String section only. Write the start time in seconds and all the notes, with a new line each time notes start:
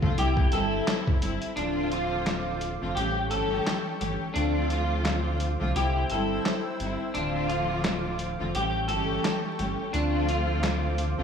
0.01 D3 F3 A3 C4 F4
0.17 G3 C4 E4
0.54 G3 C4 E4
1.22 G3 C4 E4
1.56 D3 F3 A3 C4 F4
2.81 D3 F3 A3 C4 F4
2.95 E3 G3 A3 C#4 G4
3.29 E3 G3 A3 C#4 G4
3.99 E3 G3 A3 C#4 G4
4.34 D3 F3 A3 C4 F4
5.59 D3 F3 A3 C4 F4
5.74 G3 C4 E4
6.12 G3 C4 E4
6.80 G3 C4 E4
7.14 D3 F3 A3 C4 F4
8.39 D3 F3 A3 C4 F4
8.54 E3 G3 A3 C#4 G4
8.88 E3 G3 A3 C#4 G4
9.58 E3 G3 A3 C#4 G4
9.92 D3 F3 A3 C4 F4
11.17 D3 F3 A3 C4 F4